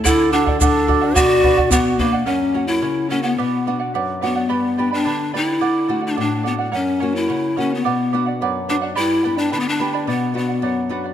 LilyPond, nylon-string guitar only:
\new Staff \with { instrumentName = "Nylon-string guitar" } { \time 2/4 \key b \minor \tempo 4 = 108 d8 fis'8 a'8 fis'8 | b,8 d'8 fis'8 d'8 | fis,8 <ais cis' fis'>8 cis8 <ais cis' fis'>8 | b,8 <b d' fis'>8 fis,8 <b d' fis'>8 |
g,8 <b d' g'>8 d8 <b d' g'>8 | d8 <a d' fis'>8 a,8 <a d' fis'>8 | fis,8 <ais cis' fis'>8 cis8 <ais cis' fis'>8 | b,8 <b d' fis'>8 fis,8 <b d' fis'>8 |
g,8 <b d' g'>8 d8 <b d' g'>8 | b,8 <b d' fis'>8 fis,8 <b d' fis'>8 | }